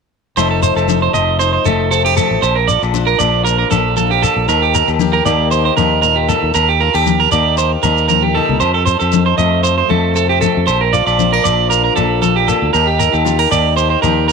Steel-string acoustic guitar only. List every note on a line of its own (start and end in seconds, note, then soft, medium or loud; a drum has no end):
0.37 2.43 F2 medium
0.37 1.13 F3 soft
0.37 1.13 A3 medium
0.37 0.88 D#4 medium
0.37 0.63 A4 medium
0.63 2.40 C5 medium
0.89 1.39 D#4 medium
1.13 2.40 F3 medium
1.13 1.66 A3 medium
1.41 1.91 D#4 medium
1.68 2.17 A3 medium
1.91 2.40 C3 medium
1.91 2.06 C4 medium
2.06 2.43 D#4 soft
2.18 2.40 A3 medium
2.70 4.49 F4 medium
2.96 3.47 D4 medium
3.21 4.47 F3 medium
3.21 3.73 A#3 soft
3.48 4.47 D4 medium
3.73 5.26 A#3 medium
3.98 4.23 C3 medium
4.49 6.54 D#3 medium
4.75 5.00 G4 medium
5.01 5.52 G4 medium
5.26 6.52 A#3 medium
5.26 5.78 D#4 medium
5.53 6.04 G4 medium
5.79 6.31 D#4 medium
6.04 6.55 A#2 medium
6.31 6.85 D#4 medium
6.55 muted steel-string acoustic guitar stroke medium
6.82 6.95 F4 medium
6.95 7.07 G4 soft
7.08 7.59 G4 medium
7.33 8.59 A#3 medium
7.33 7.84 D#4 soft
7.60 8.10 G4 medium
7.86 8.36 D#4 medium
8.11 8.62 A#2 medium
8.11 8.59 G4 medium
8.37 8.59 D#4 medium
8.61 10.68 F2 medium
8.87 10.65 C5 medium
9.12 9.63 D#4 medium
9.37 10.64 F3 medium
9.37 9.88 A3 soft
9.64 muted steel-string acoustic guitar stroke medium
9.89 10.40 A3 medium
10.14 10.64 C3 medium
10.42 10.65 A3 medium
10.66 12.22 A#2 medium
10.93 12.74 F4 medium
11.18 11.33 C4 medium
11.33 11.70 D4 soft
11.45 12.71 F3 medium
11.45 11.96 A#3 medium
11.71 12.21 D4 medium
11.96 12.49 A#3 medium
12.22 12.74 F2 medium
12.22 12.71 D4 medium
12.49 12.74 A#3 medium
12.74 14.32 D#3 medium
12.74 13.51 A#3 medium
12.74 13.52 D#4 medium
12.74 13.25 G4 medium
13.25 13.39 F4 medium
13.39 13.76 G4 medium
13.52 14.32 A#3 medium
13.52 14.04 D#4 medium
13.78 14.29 G4 medium
14.05 14.32 D#4 medium